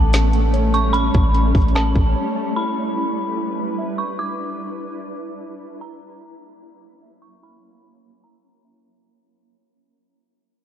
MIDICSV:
0, 0, Header, 1, 6, 480
1, 0, Start_track
1, 0, Tempo, 405405
1, 1114, Time_signature, 4, 2, 24, 8
1, 12604, End_track
2, 0, Start_track
2, 0, Title_t, "Synth bell"
2, 0, Program_c, 0, 98
2, 0, Note_on_c, 0, 81, 106
2, 825, Note_off_c, 0, 81, 0
2, 875, Note_on_c, 0, 85, 80
2, 1101, Note_on_c, 0, 83, 106
2, 1103, Note_off_c, 0, 85, 0
2, 2020, Note_off_c, 0, 83, 0
2, 2078, Note_on_c, 0, 81, 87
2, 2988, Note_off_c, 0, 81, 0
2, 3036, Note_on_c, 0, 83, 88
2, 4668, Note_off_c, 0, 83, 0
2, 4715, Note_on_c, 0, 85, 72
2, 4942, Note_off_c, 0, 85, 0
2, 4960, Note_on_c, 0, 86, 106
2, 6830, Note_off_c, 0, 86, 0
2, 6881, Note_on_c, 0, 82, 92
2, 8510, Note_off_c, 0, 82, 0
2, 8547, Note_on_c, 0, 85, 82
2, 8779, Note_off_c, 0, 85, 0
2, 8802, Note_on_c, 0, 83, 93
2, 9710, Note_off_c, 0, 83, 0
2, 9752, Note_on_c, 0, 82, 82
2, 10666, Note_off_c, 0, 82, 0
2, 12604, End_track
3, 0, Start_track
3, 0, Title_t, "Synth keys"
3, 0, Program_c, 1, 88
3, 0, Note_on_c, 1, 61, 79
3, 149, Note_off_c, 1, 61, 0
3, 163, Note_on_c, 1, 61, 84
3, 632, Note_on_c, 1, 73, 93
3, 873, Note_on_c, 1, 81, 95
3, 1101, Note_off_c, 1, 61, 0
3, 1115, Note_on_c, 1, 61, 92
3, 1577, Note_off_c, 1, 61, 0
3, 1591, Note_on_c, 1, 61, 80
3, 2058, Note_off_c, 1, 61, 0
3, 2072, Note_on_c, 1, 61, 89
3, 2073, Note_off_c, 1, 73, 0
3, 2314, Note_off_c, 1, 81, 0
3, 2553, Note_on_c, 1, 73, 88
3, 2791, Note_on_c, 1, 81, 93
3, 3033, Note_off_c, 1, 61, 0
3, 3033, Note_off_c, 1, 73, 0
3, 3033, Note_off_c, 1, 81, 0
3, 3037, Note_on_c, 1, 64, 93
3, 3497, Note_off_c, 1, 64, 0
3, 3511, Note_on_c, 1, 64, 83
3, 3978, Note_off_c, 1, 64, 0
3, 3992, Note_on_c, 1, 64, 81
3, 4478, Note_on_c, 1, 76, 78
3, 4718, Note_on_c, 1, 83, 90
3, 4944, Note_off_c, 1, 64, 0
3, 4958, Note_on_c, 1, 64, 93
3, 5423, Note_off_c, 1, 64, 0
3, 5437, Note_on_c, 1, 64, 77
3, 5896, Note_off_c, 1, 64, 0
3, 5911, Note_on_c, 1, 64, 87
3, 5916, Note_off_c, 1, 76, 0
3, 6156, Note_off_c, 1, 83, 0
3, 6390, Note_on_c, 1, 76, 96
3, 6638, Note_on_c, 1, 83, 86
3, 6859, Note_off_c, 1, 64, 0
3, 6872, Note_off_c, 1, 76, 0
3, 6873, Note_on_c, 1, 64, 96
3, 6876, Note_off_c, 1, 83, 0
3, 7341, Note_off_c, 1, 64, 0
3, 7355, Note_on_c, 1, 64, 76
3, 7827, Note_off_c, 1, 64, 0
3, 7842, Note_on_c, 1, 64, 90
3, 8315, Note_on_c, 1, 76, 86
3, 8549, Note_on_c, 1, 85, 91
3, 8777, Note_off_c, 1, 64, 0
3, 8791, Note_on_c, 1, 64, 93
3, 9262, Note_off_c, 1, 64, 0
3, 9276, Note_on_c, 1, 64, 78
3, 9743, Note_off_c, 1, 64, 0
3, 9754, Note_off_c, 1, 76, 0
3, 9758, Note_on_c, 1, 64, 84
3, 9992, Note_off_c, 1, 85, 0
3, 10234, Note_on_c, 1, 76, 84
3, 10478, Note_on_c, 1, 82, 91
3, 10714, Note_off_c, 1, 76, 0
3, 10716, Note_off_c, 1, 64, 0
3, 10716, Note_off_c, 1, 82, 0
3, 12604, End_track
4, 0, Start_track
4, 0, Title_t, "Ambient pad"
4, 0, Program_c, 2, 92
4, 0, Note_on_c, 2, 55, 85
4, 0, Note_on_c, 2, 57, 74
4, 0, Note_on_c, 2, 61, 91
4, 2996, Note_off_c, 2, 61, 0
4, 2997, Note_off_c, 2, 57, 0
4, 3035, Note_on_c, 2, 62, 78
4, 3035, Note_on_c, 2, 71, 94
4, 3037, Note_on_c, 2, 64, 75
4, 6828, Note_off_c, 2, 55, 0
4, 6836, Note_off_c, 2, 62, 0
4, 6836, Note_off_c, 2, 71, 0
4, 6876, Note_on_c, 2, 61, 77
4, 6877, Note_on_c, 2, 54, 82
4, 6877, Note_on_c, 2, 58, 88
4, 10668, Note_off_c, 2, 64, 0
4, 10677, Note_off_c, 2, 54, 0
4, 10677, Note_off_c, 2, 58, 0
4, 10677, Note_off_c, 2, 61, 0
4, 12604, End_track
5, 0, Start_track
5, 0, Title_t, "808-style bass"
5, 0, Program_c, 3, 38
5, 0, Note_on_c, 3, 33, 97
5, 1306, Note_off_c, 3, 33, 0
5, 1357, Note_on_c, 3, 33, 104
5, 1816, Note_off_c, 3, 33, 0
5, 1833, Note_on_c, 3, 33, 98
5, 2295, Note_off_c, 3, 33, 0
5, 2315, Note_on_c, 3, 33, 103
5, 2545, Note_off_c, 3, 33, 0
5, 12604, End_track
6, 0, Start_track
6, 0, Title_t, "Drums"
6, 156, Note_on_c, 9, 42, 70
6, 164, Note_on_c, 9, 38, 108
6, 274, Note_off_c, 9, 42, 0
6, 282, Note_off_c, 9, 38, 0
6, 395, Note_on_c, 9, 42, 70
6, 514, Note_off_c, 9, 42, 0
6, 637, Note_on_c, 9, 42, 65
6, 755, Note_off_c, 9, 42, 0
6, 877, Note_on_c, 9, 42, 85
6, 996, Note_off_c, 9, 42, 0
6, 1115, Note_on_c, 9, 42, 81
6, 1233, Note_off_c, 9, 42, 0
6, 1352, Note_on_c, 9, 42, 56
6, 1357, Note_on_c, 9, 36, 94
6, 1471, Note_off_c, 9, 42, 0
6, 1476, Note_off_c, 9, 36, 0
6, 1592, Note_on_c, 9, 42, 83
6, 1711, Note_off_c, 9, 42, 0
6, 1833, Note_on_c, 9, 36, 90
6, 1834, Note_on_c, 9, 42, 35
6, 1837, Note_on_c, 9, 46, 49
6, 1914, Note_off_c, 9, 42, 0
6, 1914, Note_on_c, 9, 42, 49
6, 1951, Note_off_c, 9, 36, 0
6, 1955, Note_off_c, 9, 46, 0
6, 1994, Note_off_c, 9, 42, 0
6, 1994, Note_on_c, 9, 42, 62
6, 2076, Note_off_c, 9, 42, 0
6, 2076, Note_on_c, 9, 42, 67
6, 2084, Note_on_c, 9, 38, 107
6, 2194, Note_off_c, 9, 42, 0
6, 2202, Note_off_c, 9, 38, 0
6, 2314, Note_on_c, 9, 42, 68
6, 2315, Note_on_c, 9, 36, 84
6, 2433, Note_off_c, 9, 36, 0
6, 2433, Note_off_c, 9, 42, 0
6, 12604, End_track
0, 0, End_of_file